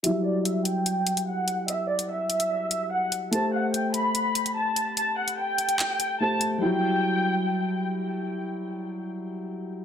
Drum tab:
HH |x---x-x-x-xx--x-|x--x--xx--x---x-|x---x-x-x-xx--x-|x--x--xx--x---x-|
CP |----------------|----------------|----------------|--------x-------|

HH |----------------|----------------|
CP |----------------|----------------|